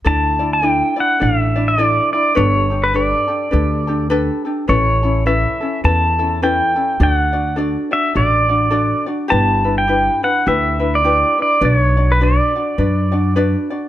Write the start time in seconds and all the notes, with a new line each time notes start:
0.04 D2 D4 E4 A4 D5 A5
0.39 D4 E4 D5
0.53 G#5
0.62 D4 E4 A4 D5
0.70 G5
0.96 D4 E4 D5
1.00 F#5
1.20 A1 D4 E4 A4 D5 F5
1.40 E5
1.56 D4 E4 D5
1.68 D#5
1.78 D4 E4 A4 D5
1.85 D5
2.13 D4 E4 D5
2.35 G1 D4 G4 A4 B4 C#5
2.70 D4 G4 A4
2.84 B4
2.94 D4 G4 A4 B4 D5
3.28 D4 G4 A4
3.51 D2 D4 G4 A4 B4
3.87 D4 G4 A4
4.10 D4 G4 A4 B4
4.45 D4 G4 A4
4.68 A1 C#4 E4 A4 B4 C#5
5.03 C#4 E4 A4
5.26 C#4 E4 A4 B4 E5
5.61 C#4 E4 A4
5.84 E2 C#4 E4 A4 B4 A5
6.19 C#4 E4 A4
6.42 C#4 E4 A4 B4 G5
6.76 C#4 E4 A4
7.00 D2 D4 F#4 A4 D5 F#5
7.33 D4 F#4 D5
7.56 D4 F#4 A4 D5
7.91 D4 F#4 D5 E5
8.14 A1 D4 F#4 A4 D5
8.49 D4 F#4 D5
8.71 D4 F#4 A4 D5
9.06 D4 F#4 D5
9.28 G1 D4 E4 G4 B4 A5
9.64 D4 E4 B4
9.78 G5
9.87 D4 E4 G4 B4
10.23 D4 E4 B4 F#5
10.46 D2 D4 E4 G4 B4 E5
10.80 D4 E4 B4
10.95 D5
11.04 D4 E4 G4 B4
11.38 D4 E4 B4
11.42 D5
11.61 B1 D4 F#4 B4 D5
11.65 D5
11.76 C#5
11.97 D4 F#4 D5
12.12 B4
12.21 D4 F#4 B4 D5
12.56 D4 F#4 D5
12.78 F#2 D4 F#4 B4 D5
13.12 D4 F#4 D5
13.36 D4 F#4 B4 D5
13.70 D4 F#4 D5